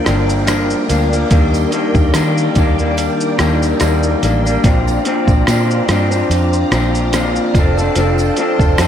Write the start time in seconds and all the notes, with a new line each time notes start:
Already playing: F4 A#4 D5 G5
0.04 G1 G2 F3 A#3 D4, cross-stick, closed hi-hat, tambourine, shaker
0.29 tambourine, shaker
0.45 G2 F3 A#3 D4, cross-stick, closed hi-hat, tambourine, shaker
0.70 shaker
0.87 D2 G2 F3 A#3 D4, closed hi-hat, tambourine, shaker
1.09 A#3 D4, shaker
1.14 F3
1.29 D#2 D#3 G3 A#3 D4, kick, closed hi-hat, tambourine, shaker
1.54 tambourine, shaker
1.71 D#3 G3 A#3, closed hi-hat, shaker
1.75 D4
1.95 D#2, kick, tambourine, shaker
2.13 D#3 G3 A#3 D4, cross-stick, closed hi-hat, tambourine, shaker
2.38 shaker
2.55 D#2 D#3 G3 A#3 D4, kick, closed hi-hat, tambourine, shaker
2.78 G3 A#3 D4, shaker
2.97 closed hi-hat, tambourine, shaker
3.20 shaker
3.37 D#2 D#3 G3 A#3 D4, cross-stick, closed hi-hat, tambourine, shaker
3.62 tambourine, shaker
3.80 D#2 D#3 G3 A#3 D4, cross-stick, closed hi-hat, tambourine, shaker
4.03 shaker
4.21 A1 D#3 G3 A#3 D4, closed hi-hat, tambourine, shaker
4.44 A#3 D4, tambourine, shaker
4.48 G3
4.64 A#1 A#2 F3 C4 D4 F4 C5 A#5, kick, closed hi-hat, tambourine, shaker
4.87 tambourine, shaker
5.04 A#2 F3 C4 D4, closed hi-hat, shaker
5.28 A#1, kick, tambourine, shaker
5.47 A#2 F3 C4 D4, cross-stick, closed hi-hat, tambourine, shaker
5.71 shaker
5.88 G2 A#2 F3 C4 D4, cross-stick, closed hi-hat, tambourine, shaker
6.11 F3 C4 D4, tambourine, shaker
6.30 F2, closed hi-hat, tambourine, shaker
6.53 shaker
6.71 A#1 A#2 F3 C4 D4, cross-stick, closed hi-hat, tambourine, shaker
6.95 tambourine, shaker
7.12 A#2 F3 C4 D4, cross-stick, closed hi-hat, tambourine, shaker
7.36 shaker
7.54 F1 F3 C4 D4 A5, kick, closed hi-hat, tambourine, shaker
7.59 A4
7.77 C4 D4 A4, tambourine, shaker
7.95 F1 F3 C4 D4 A4, closed hi-hat, tambourine, shaker
8.18 tambourine, shaker
8.37 F3 C4 D4, closed hi-hat, shaker
8.41 A4
8.59 F1, kick, tambourine, shaker
8.78 F2 F3 C4 D4 A4, cross-stick, closed hi-hat, tambourine, shaker